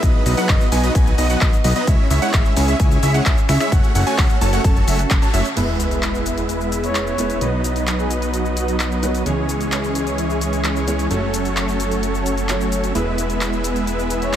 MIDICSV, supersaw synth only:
0, 0, Header, 1, 2, 480
1, 0, Start_track
1, 0, Tempo, 461538
1, 29, Time_signature, 4, 2, 24, 8
1, 14934, End_track
2, 0, Start_track
2, 0, Title_t, "Supersaw synth"
2, 0, Program_c, 0, 81
2, 29, Note_on_c, 0, 54, 89
2, 29, Note_on_c, 0, 59, 79
2, 29, Note_on_c, 0, 63, 78
2, 240, Note_off_c, 0, 54, 0
2, 240, Note_off_c, 0, 59, 0
2, 240, Note_off_c, 0, 63, 0
2, 269, Note_on_c, 0, 59, 84
2, 269, Note_on_c, 0, 63, 81
2, 270, Note_on_c, 0, 54, 92
2, 270, Note_on_c, 0, 71, 83
2, 270, Note_on_c, 0, 75, 105
2, 360, Note_off_c, 0, 59, 0
2, 360, Note_off_c, 0, 63, 0
2, 361, Note_off_c, 0, 54, 0
2, 361, Note_off_c, 0, 71, 0
2, 361, Note_off_c, 0, 75, 0
2, 388, Note_on_c, 0, 71, 99
2, 389, Note_on_c, 0, 54, 103
2, 389, Note_on_c, 0, 59, 95
2, 389, Note_on_c, 0, 63, 97
2, 389, Note_on_c, 0, 78, 114
2, 491, Note_off_c, 0, 54, 0
2, 491, Note_off_c, 0, 59, 0
2, 491, Note_off_c, 0, 63, 0
2, 491, Note_off_c, 0, 71, 0
2, 491, Note_off_c, 0, 78, 0
2, 749, Note_on_c, 0, 54, 92
2, 749, Note_on_c, 0, 59, 80
2, 749, Note_on_c, 0, 63, 85
2, 749, Note_on_c, 0, 71, 81
2, 749, Note_on_c, 0, 80, 100
2, 840, Note_off_c, 0, 54, 0
2, 840, Note_off_c, 0, 59, 0
2, 840, Note_off_c, 0, 63, 0
2, 840, Note_off_c, 0, 71, 0
2, 840, Note_off_c, 0, 80, 0
2, 869, Note_on_c, 0, 54, 83
2, 869, Note_on_c, 0, 59, 74
2, 869, Note_on_c, 0, 63, 71
2, 869, Note_on_c, 0, 75, 88
2, 870, Note_on_c, 0, 71, 74
2, 960, Note_off_c, 0, 54, 0
2, 960, Note_off_c, 0, 63, 0
2, 960, Note_off_c, 0, 75, 0
2, 961, Note_off_c, 0, 59, 0
2, 961, Note_off_c, 0, 71, 0
2, 990, Note_on_c, 0, 59, 80
2, 990, Note_on_c, 0, 63, 82
2, 990, Note_on_c, 0, 71, 82
2, 990, Note_on_c, 0, 80, 101
2, 1201, Note_off_c, 0, 59, 0
2, 1201, Note_off_c, 0, 63, 0
2, 1201, Note_off_c, 0, 71, 0
2, 1201, Note_off_c, 0, 80, 0
2, 1229, Note_on_c, 0, 59, 92
2, 1229, Note_on_c, 0, 71, 93
2, 1230, Note_on_c, 0, 54, 104
2, 1230, Note_on_c, 0, 63, 90
2, 1230, Note_on_c, 0, 75, 110
2, 1320, Note_off_c, 0, 71, 0
2, 1321, Note_off_c, 0, 54, 0
2, 1321, Note_off_c, 0, 59, 0
2, 1321, Note_off_c, 0, 63, 0
2, 1321, Note_off_c, 0, 75, 0
2, 1350, Note_on_c, 0, 54, 81
2, 1350, Note_on_c, 0, 59, 77
2, 1350, Note_on_c, 0, 63, 73
2, 1350, Note_on_c, 0, 71, 77
2, 1350, Note_on_c, 0, 78, 91
2, 1441, Note_off_c, 0, 54, 0
2, 1441, Note_off_c, 0, 59, 0
2, 1441, Note_off_c, 0, 63, 0
2, 1441, Note_off_c, 0, 71, 0
2, 1441, Note_off_c, 0, 78, 0
2, 1469, Note_on_c, 0, 59, 77
2, 1469, Note_on_c, 0, 63, 75
2, 1469, Note_on_c, 0, 71, 77
2, 1469, Note_on_c, 0, 75, 89
2, 1470, Note_on_c, 0, 54, 83
2, 1595, Note_off_c, 0, 54, 0
2, 1595, Note_off_c, 0, 59, 0
2, 1595, Note_off_c, 0, 63, 0
2, 1595, Note_off_c, 0, 71, 0
2, 1595, Note_off_c, 0, 75, 0
2, 1709, Note_on_c, 0, 63, 91
2, 1710, Note_on_c, 0, 54, 100
2, 1710, Note_on_c, 0, 59, 86
2, 1710, Note_on_c, 0, 71, 87
2, 1710, Note_on_c, 0, 75, 109
2, 1801, Note_off_c, 0, 54, 0
2, 1801, Note_off_c, 0, 59, 0
2, 1801, Note_off_c, 0, 63, 0
2, 1801, Note_off_c, 0, 71, 0
2, 1801, Note_off_c, 0, 75, 0
2, 1829, Note_on_c, 0, 54, 100
2, 1829, Note_on_c, 0, 59, 88
2, 1829, Note_on_c, 0, 63, 94
2, 1829, Note_on_c, 0, 71, 90
2, 1829, Note_on_c, 0, 75, 108
2, 1931, Note_off_c, 0, 54, 0
2, 1931, Note_off_c, 0, 59, 0
2, 1931, Note_off_c, 0, 63, 0
2, 1931, Note_off_c, 0, 71, 0
2, 1931, Note_off_c, 0, 75, 0
2, 1949, Note_on_c, 0, 56, 88
2, 1949, Note_on_c, 0, 61, 77
2, 1949, Note_on_c, 0, 64, 82
2, 1949, Note_on_c, 0, 73, 80
2, 1949, Note_on_c, 0, 76, 95
2, 2160, Note_off_c, 0, 56, 0
2, 2160, Note_off_c, 0, 61, 0
2, 2160, Note_off_c, 0, 64, 0
2, 2160, Note_off_c, 0, 73, 0
2, 2160, Note_off_c, 0, 76, 0
2, 2189, Note_on_c, 0, 56, 90
2, 2189, Note_on_c, 0, 61, 83
2, 2189, Note_on_c, 0, 64, 85
2, 2189, Note_on_c, 0, 73, 85
2, 2189, Note_on_c, 0, 76, 98
2, 2280, Note_off_c, 0, 56, 0
2, 2280, Note_off_c, 0, 61, 0
2, 2280, Note_off_c, 0, 64, 0
2, 2280, Note_off_c, 0, 73, 0
2, 2280, Note_off_c, 0, 76, 0
2, 2308, Note_on_c, 0, 56, 100
2, 2308, Note_on_c, 0, 61, 94
2, 2308, Note_on_c, 0, 64, 94
2, 2308, Note_on_c, 0, 73, 95
2, 2309, Note_on_c, 0, 78, 117
2, 2411, Note_off_c, 0, 56, 0
2, 2411, Note_off_c, 0, 61, 0
2, 2411, Note_off_c, 0, 64, 0
2, 2411, Note_off_c, 0, 73, 0
2, 2411, Note_off_c, 0, 78, 0
2, 2429, Note_on_c, 0, 56, 94
2, 2429, Note_on_c, 0, 61, 91
2, 2429, Note_on_c, 0, 64, 85
2, 2429, Note_on_c, 0, 73, 83
2, 2429, Note_on_c, 0, 76, 104
2, 2630, Note_off_c, 0, 56, 0
2, 2630, Note_off_c, 0, 61, 0
2, 2630, Note_off_c, 0, 64, 0
2, 2630, Note_off_c, 0, 73, 0
2, 2630, Note_off_c, 0, 76, 0
2, 2669, Note_on_c, 0, 56, 94
2, 2669, Note_on_c, 0, 61, 83
2, 2669, Note_on_c, 0, 64, 83
2, 2669, Note_on_c, 0, 73, 83
2, 2669, Note_on_c, 0, 80, 96
2, 2760, Note_off_c, 0, 56, 0
2, 2760, Note_off_c, 0, 61, 0
2, 2760, Note_off_c, 0, 64, 0
2, 2760, Note_off_c, 0, 73, 0
2, 2760, Note_off_c, 0, 80, 0
2, 2789, Note_on_c, 0, 56, 83
2, 2789, Note_on_c, 0, 61, 71
2, 2789, Note_on_c, 0, 64, 72
2, 2789, Note_on_c, 0, 73, 72
2, 2789, Note_on_c, 0, 76, 87
2, 2880, Note_off_c, 0, 56, 0
2, 2880, Note_off_c, 0, 61, 0
2, 2880, Note_off_c, 0, 64, 0
2, 2880, Note_off_c, 0, 76, 0
2, 2881, Note_off_c, 0, 73, 0
2, 2910, Note_on_c, 0, 56, 88
2, 2910, Note_on_c, 0, 61, 81
2, 2910, Note_on_c, 0, 64, 82
2, 2910, Note_on_c, 0, 73, 79
2, 3121, Note_off_c, 0, 56, 0
2, 3121, Note_off_c, 0, 61, 0
2, 3121, Note_off_c, 0, 64, 0
2, 3121, Note_off_c, 0, 73, 0
2, 3149, Note_on_c, 0, 56, 101
2, 3149, Note_on_c, 0, 64, 90
2, 3149, Note_on_c, 0, 73, 92
2, 3150, Note_on_c, 0, 61, 90
2, 3150, Note_on_c, 0, 76, 114
2, 3240, Note_off_c, 0, 64, 0
2, 3241, Note_off_c, 0, 56, 0
2, 3241, Note_off_c, 0, 61, 0
2, 3241, Note_off_c, 0, 73, 0
2, 3241, Note_off_c, 0, 76, 0
2, 3269, Note_on_c, 0, 56, 84
2, 3269, Note_on_c, 0, 61, 79
2, 3269, Note_on_c, 0, 73, 78
2, 3269, Note_on_c, 0, 78, 92
2, 3270, Note_on_c, 0, 64, 78
2, 3360, Note_off_c, 0, 61, 0
2, 3360, Note_off_c, 0, 78, 0
2, 3361, Note_off_c, 0, 56, 0
2, 3361, Note_off_c, 0, 64, 0
2, 3361, Note_off_c, 0, 73, 0
2, 3629, Note_on_c, 0, 56, 98
2, 3629, Note_on_c, 0, 61, 94
2, 3629, Note_on_c, 0, 64, 92
2, 3630, Note_on_c, 0, 73, 87
2, 3630, Note_on_c, 0, 76, 109
2, 3720, Note_off_c, 0, 61, 0
2, 3720, Note_off_c, 0, 64, 0
2, 3721, Note_off_c, 0, 56, 0
2, 3721, Note_off_c, 0, 73, 0
2, 3721, Note_off_c, 0, 76, 0
2, 3748, Note_on_c, 0, 61, 92
2, 3748, Note_on_c, 0, 64, 94
2, 3748, Note_on_c, 0, 73, 91
2, 3748, Note_on_c, 0, 76, 113
2, 3749, Note_on_c, 0, 56, 98
2, 3851, Note_off_c, 0, 56, 0
2, 3851, Note_off_c, 0, 61, 0
2, 3851, Note_off_c, 0, 64, 0
2, 3851, Note_off_c, 0, 73, 0
2, 3851, Note_off_c, 0, 76, 0
2, 3869, Note_on_c, 0, 57, 87
2, 3869, Note_on_c, 0, 61, 78
2, 3870, Note_on_c, 0, 66, 84
2, 4080, Note_off_c, 0, 57, 0
2, 4080, Note_off_c, 0, 61, 0
2, 4081, Note_off_c, 0, 66, 0
2, 4108, Note_on_c, 0, 61, 86
2, 4109, Note_on_c, 0, 57, 94
2, 4109, Note_on_c, 0, 66, 85
2, 4109, Note_on_c, 0, 73, 80
2, 4109, Note_on_c, 0, 78, 98
2, 4200, Note_off_c, 0, 57, 0
2, 4200, Note_off_c, 0, 61, 0
2, 4200, Note_off_c, 0, 66, 0
2, 4200, Note_off_c, 0, 73, 0
2, 4200, Note_off_c, 0, 78, 0
2, 4228, Note_on_c, 0, 57, 103
2, 4228, Note_on_c, 0, 61, 97
2, 4228, Note_on_c, 0, 66, 97
2, 4228, Note_on_c, 0, 73, 93
2, 4228, Note_on_c, 0, 80, 115
2, 4330, Note_off_c, 0, 61, 0
2, 4331, Note_off_c, 0, 57, 0
2, 4331, Note_off_c, 0, 66, 0
2, 4331, Note_off_c, 0, 73, 0
2, 4331, Note_off_c, 0, 80, 0
2, 4588, Note_on_c, 0, 73, 80
2, 4589, Note_on_c, 0, 57, 89
2, 4589, Note_on_c, 0, 61, 82
2, 4589, Note_on_c, 0, 66, 81
2, 4589, Note_on_c, 0, 81, 98
2, 4680, Note_off_c, 0, 57, 0
2, 4680, Note_off_c, 0, 61, 0
2, 4680, Note_off_c, 0, 66, 0
2, 4680, Note_off_c, 0, 73, 0
2, 4680, Note_off_c, 0, 81, 0
2, 4709, Note_on_c, 0, 57, 78
2, 4709, Note_on_c, 0, 61, 71
2, 4709, Note_on_c, 0, 66, 74
2, 4709, Note_on_c, 0, 73, 74
2, 4709, Note_on_c, 0, 78, 89
2, 4800, Note_off_c, 0, 57, 0
2, 4800, Note_off_c, 0, 61, 0
2, 4800, Note_off_c, 0, 66, 0
2, 4800, Note_off_c, 0, 73, 0
2, 4800, Note_off_c, 0, 78, 0
2, 4828, Note_on_c, 0, 61, 79
2, 4828, Note_on_c, 0, 66, 80
2, 4828, Note_on_c, 0, 73, 78
2, 4828, Note_on_c, 0, 81, 93
2, 4829, Note_on_c, 0, 57, 85
2, 5040, Note_off_c, 0, 57, 0
2, 5040, Note_off_c, 0, 61, 0
2, 5040, Note_off_c, 0, 66, 0
2, 5040, Note_off_c, 0, 73, 0
2, 5040, Note_off_c, 0, 81, 0
2, 5068, Note_on_c, 0, 57, 79
2, 5068, Note_on_c, 0, 61, 71
2, 5068, Note_on_c, 0, 66, 72
2, 5068, Note_on_c, 0, 76, 85
2, 5069, Note_on_c, 0, 73, 71
2, 5194, Note_off_c, 0, 57, 0
2, 5194, Note_off_c, 0, 61, 0
2, 5194, Note_off_c, 0, 66, 0
2, 5194, Note_off_c, 0, 76, 0
2, 5195, Note_off_c, 0, 73, 0
2, 5429, Note_on_c, 0, 57, 90
2, 5429, Note_on_c, 0, 61, 79
2, 5429, Note_on_c, 0, 66, 81
2, 5429, Note_on_c, 0, 73, 83
2, 5429, Note_on_c, 0, 81, 100
2, 5531, Note_off_c, 0, 57, 0
2, 5531, Note_off_c, 0, 61, 0
2, 5531, Note_off_c, 0, 66, 0
2, 5531, Note_off_c, 0, 73, 0
2, 5531, Note_off_c, 0, 81, 0
2, 5549, Note_on_c, 0, 57, 96
2, 5549, Note_on_c, 0, 61, 90
2, 5549, Note_on_c, 0, 66, 88
2, 5549, Note_on_c, 0, 73, 83
2, 5549, Note_on_c, 0, 76, 104
2, 5675, Note_off_c, 0, 57, 0
2, 5675, Note_off_c, 0, 61, 0
2, 5675, Note_off_c, 0, 66, 0
2, 5675, Note_off_c, 0, 73, 0
2, 5675, Note_off_c, 0, 76, 0
2, 5788, Note_on_c, 0, 76, 80
2, 5789, Note_on_c, 0, 56, 72
2, 5789, Note_on_c, 0, 59, 65
2, 5789, Note_on_c, 0, 64, 68
2, 5789, Note_on_c, 0, 71, 65
2, 7680, Note_off_c, 0, 56, 0
2, 7680, Note_off_c, 0, 59, 0
2, 7680, Note_off_c, 0, 64, 0
2, 7680, Note_off_c, 0, 71, 0
2, 7680, Note_off_c, 0, 76, 0
2, 7709, Note_on_c, 0, 54, 76
2, 7709, Note_on_c, 0, 59, 67
2, 7709, Note_on_c, 0, 63, 67
2, 7709, Note_on_c, 0, 71, 65
2, 7709, Note_on_c, 0, 75, 81
2, 9600, Note_off_c, 0, 54, 0
2, 9600, Note_off_c, 0, 59, 0
2, 9600, Note_off_c, 0, 63, 0
2, 9600, Note_off_c, 0, 71, 0
2, 9600, Note_off_c, 0, 75, 0
2, 9629, Note_on_c, 0, 56, 67
2, 9630, Note_on_c, 0, 52, 74
2, 9630, Note_on_c, 0, 61, 68
2, 9630, Note_on_c, 0, 68, 67
2, 9630, Note_on_c, 0, 73, 80
2, 11521, Note_off_c, 0, 52, 0
2, 11521, Note_off_c, 0, 56, 0
2, 11521, Note_off_c, 0, 61, 0
2, 11521, Note_off_c, 0, 68, 0
2, 11521, Note_off_c, 0, 73, 0
2, 11550, Note_on_c, 0, 54, 72
2, 11550, Note_on_c, 0, 57, 70
2, 11550, Note_on_c, 0, 61, 69
2, 11550, Note_on_c, 0, 69, 66
2, 11551, Note_on_c, 0, 73, 81
2, 13441, Note_off_c, 0, 54, 0
2, 13441, Note_off_c, 0, 57, 0
2, 13441, Note_off_c, 0, 61, 0
2, 13441, Note_off_c, 0, 69, 0
2, 13441, Note_off_c, 0, 73, 0
2, 13469, Note_on_c, 0, 59, 66
2, 13470, Note_on_c, 0, 56, 73
2, 13470, Note_on_c, 0, 64, 67
2, 13470, Note_on_c, 0, 71, 70
2, 13470, Note_on_c, 0, 76, 78
2, 14934, Note_off_c, 0, 56, 0
2, 14934, Note_off_c, 0, 59, 0
2, 14934, Note_off_c, 0, 64, 0
2, 14934, Note_off_c, 0, 71, 0
2, 14934, Note_off_c, 0, 76, 0
2, 14934, End_track
0, 0, End_of_file